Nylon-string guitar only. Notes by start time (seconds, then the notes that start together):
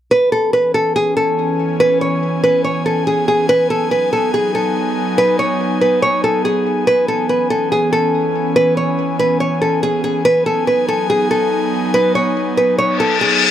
0.11 B4
0.32 A4
0.53 B4
0.74 A4
0.96 G#4
1.17 A4
1.80 B4
2.01 C#5
2.44 B4
2.64 C#5
2.86 A4
3.07 G#4
3.28 G#4
3.49 B4
3.70 A4
3.91 B4
4.13 A4
4.34 G#4
4.55 A4
5.18 B4
5.39 C#5
5.81 B4
6.02 C#5
6.24 A4
6.45 G#4
6.87 B4
7.08 A4
7.29 B4
7.50 A4
7.72 G#4
7.93 A4
8.56 B4
8.77 C#5
9.19 B4
9.40 C#5
9.62 A4
9.83 G#4
10.04 G#4
10.25 B4
10.46 A4
10.67 B4
10.88 A4
11.10 G#4
11.31 A4
11.94 B4
12.15 C#5
12.57 B4
12.78 C#5
13.00 A4
13.21 G#4